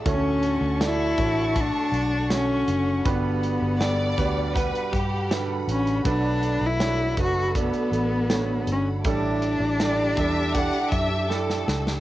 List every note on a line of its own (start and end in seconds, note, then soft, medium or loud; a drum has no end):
0.00 3.00 A4 medium
0.05 0.58 D2 medium
0.05 1.14 A2 medium
0.05 0.77 D3 medium
0.05 0.77 A3 medium
0.05 0.78 C#4 medium
0.05 0.77 F#4 medium
0.05 0.77 C#5 medium
0.05 9.01 F#5 medium
0.05 3.02 A5 medium
0.05 3.02 C#6 medium
0.05 kick loud
0.05 closed hi-hat medium
0.43 closed hi-hat medium
0.61 1.13 D2 loud
0.81 1.16 A3 medium
0.81 1.16 D4 medium
0.81 1.62 E4 loud
0.81 1.16 F#4 medium
0.81 1.16 D5 medium
0.81 snare loud
0.81 closed hi-hat medium
1.18 1.70 A1 medium
1.18 1.53 A3 medium
1.18 1.53 D4 medium
1.18 1.53 F#4 medium
1.18 1.54 C#5 medium
1.18 kick medium
1.18 closed hi-hat medium
1.56 2.26 A3 medium
1.56 2.26 D4 medium
1.56 2.27 F#4 medium
1.56 2.27 A4 medium
1.56 kick medium
1.56 closed hi-hat medium
1.60 2.33 D4 loud
1.92 2.63 B1 medium
1.92 closed hi-hat medium
2.30 3.02 D3 medium
2.30 3.02 A3 medium
2.30 3.11 C#4 medium
2.30 3.02 F#4 medium
2.30 3.02 C#5 medium
2.30 snare loud
2.30 closed hi-hat loud
2.68 3.02 F#1 medium
2.68 closed hi-hat medium
3.04 3.58 G1 loud
3.04 4.14 G2 medium
3.04 4.14 D3 medium
3.04 6.02 G3 medium
3.04 3.77 G3 medium
3.04 3.77 D4 medium
3.04 3.77 F#4 medium
3.04 3.77 B4 loud
3.04 9.01 B5 medium
3.04 kick loud
3.04 closed hi-hat medium
3.09 4.57 B3 medium
3.43 closed hi-hat medium
3.62 4.14 G1 loud
3.80 4.16 G3 medium
3.80 4.16 D4 medium
3.80 4.16 F#4 medium
3.80 4.16 A4 medium
3.80 4.51 D5 loud
3.80 snare loud
3.80 closed hi-hat medium
4.18 4.70 D2 medium
4.18 4.53 G3 medium
4.18 4.53 D4 medium
4.18 4.54 F#4 medium
4.18 4.54 B4 medium
4.18 kick medium
4.18 closed hi-hat medium
4.55 5.26 G3 medium
4.55 5.26 D4 medium
4.55 4.92 B4 medium
4.55 5.27 B4 medium
4.55 5.27 F#5 medium
4.55 kick medium
4.55 closed hi-hat medium
4.75 closed hi-hat soft
4.93 5.64 G2 medium
4.93 5.49 G4 medium
4.93 kick medium
4.93 closed hi-hat medium
5.30 6.02 D3 medium
5.30 6.01 G3 medium
5.30 6.02 F#4 medium
5.30 6.02 B4 medium
5.30 snare loud
5.30 closed hi-hat loud
5.67 6.02 A1 medium
5.67 6.04 C#4 medium
5.67 closed hi-hat medium
5.87 closed hi-hat medium
6.05 6.57 B1 loud
6.05 7.14 B2 medium
6.05 7.14 F#3 medium
6.05 6.76 A3 medium
6.05 6.76 D4 medium
6.05 6.68 D4 loud
6.05 6.76 F#4 medium
6.05 9.02 A4 medium
6.05 6.77 B4 loud
6.05 kick loud
6.05 closed hi-hat medium
6.43 closed hi-hat medium
6.61 7.14 B1 loud
6.66 7.20 E4 loud
6.79 7.15 A3 medium
6.79 7.15 D4 medium
6.79 7.16 F#4 medium
6.79 7.16 C#5 medium
6.79 snare loud
6.79 closed hi-hat medium
7.17 7.70 F#1 medium
7.17 7.53 A3 medium
7.17 7.53 D4 medium
7.17 7.53 F#4 medium
7.17 7.53 B4 medium
7.17 kick medium
7.17 closed hi-hat medium
7.22 7.55 F#4 medium
7.55 8.27 A3 medium
7.55 8.27 D4 medium
7.55 8.27 F#4 medium
7.55 8.27 D5 medium
7.55 kick medium
7.55 closed hi-hat loud
7.59 8.66 B3 medium
7.73 closed hi-hat soft
7.92 8.63 A1 medium
7.92 closed hi-hat medium
8.30 9.01 D3 medium
8.30 9.01 A3 medium
8.30 9.01 F#4 medium
8.30 9.02 C#5 medium
8.30 snare loud
8.30 closed hi-hat loud
8.67 9.02 G1 medium
8.67 closed hi-hat medium
8.71 8.87 C#4 medium
9.03 9.57 A1 loud
9.03 10.14 A2 medium
9.03 10.14 E3 medium
9.03 9.76 G3 medium
9.03 9.76 D4 medium
9.03 9.76 E4 medium
9.03 12.00 G4 medium
9.03 9.77 A4 loud
9.03 12.00 E5 medium
9.03 12.00 A5 medium
9.03 12.00 D6 medium
9.03 kick loud
9.03 closed hi-hat medium
9.08 11.28 D4 medium
9.42 closed hi-hat medium
9.60 10.13 A1 medium
9.80 10.16 G3 medium
9.80 10.16 D4 medium
9.80 10.16 E4 medium
9.80 10.16 A4 medium
9.80 10.15 D5 medium
9.80 snare loud
9.80 closed hi-hat medium
10.17 10.69 E2 medium
10.17 10.53 G3 medium
10.17 10.53 D4 medium
10.17 10.54 E4 medium
10.17 10.54 A4 medium
10.17 10.55 E5 loud
10.17 kick medium
10.17 closed hi-hat medium
10.54 11.26 D4 medium
10.54 11.27 E4 medium
10.54 11.26 G4 medium
10.54 11.27 A4 medium
10.54 10.92 F#5 loud
10.54 kick medium
10.54 closed hi-hat medium
10.73 closed hi-hat soft
10.92 11.63 F#2 medium
10.92 11.30 E5 medium
10.92 kick medium
10.92 closed hi-hat medium
11.29 12.00 D4 medium
11.29 12.00 E4 medium
11.29 12.00 G4 medium
11.29 12.00 A4 medium
11.29 snare medium
11.50 snare medium
11.68 12.00 C#2 medium
11.68 snare medium
11.87 snare medium